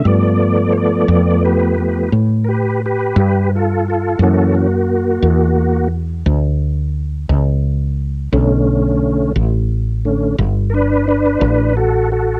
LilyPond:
<<
  \new Staff \with { instrumentName = "Tonewheel organ" } { \time 12/8 \key b \minor \tempo 4. = 58 d''4 <cis'' d''>4 <g' b'>4 r8 <g' ais' b'>8 <g' b'>8 <g' b'>8 <f' a'>8 <f' a'>8 | <fis' a'>8 <ais fis'>2 r2. r8 | r2. r8 <d' ais' b'>8 <d' b'>8 <d' b'>8 <fis' a'>8 <fis' a'>8 | }
  \new Staff \with { instrumentName = "Tonewheel organ" } { \time 12/8 \key b \minor <f a b>2~ <f a b>8 <f a b>8 r2. | <e ais cis'>8 r1 r4. | <d a cis'>4. r4 <d a cis'>8 r2. | }
  \new Staff \with { instrumentName = "Fretless electric bass" } { \clef bass \time 12/8 \key b \minor g,4. f,4. a,4. g,4. | fis,4. e,4. d,4. cis,4. | b,,4. a,,4. g,,4. a,,4. | }
>>